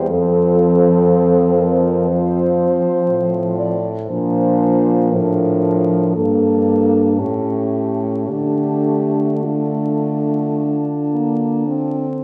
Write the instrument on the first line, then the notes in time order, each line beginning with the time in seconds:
french horn
Already playing: E2
0.09 F2 F3 C4 A4
1.60 A#4
2.08 F3 C4 C5
3.10 A2
3.58 D5
4.08 A#2 F3 D4 C5
5.13 A2 F3 D4 A#4
6.14 G2 A#3 D4 A4
7.17 A2 A3 C#4 G4
8.27 D3 A3 D4 G4
9.44 A3 D4 F4
11.12 A#3
11.67 C4